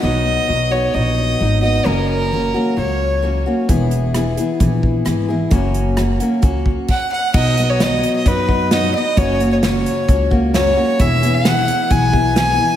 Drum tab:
CC |--------|--------|--------|------x-|
HH |--------|--------|xxxxx-x-|xxxxx---|
SD |--------|--------|--r---r-|--r-----|
BD |--------|--------|o---oo--|o---ooo-|

CC |x-------|--------|--------|
HH |-xxxx-x-|xxxxx-x-|xxxxx-x-|
SD |--o---o-|--o---o-|--o---o-|
BD |o---oo--|o---oo--|o---oo--|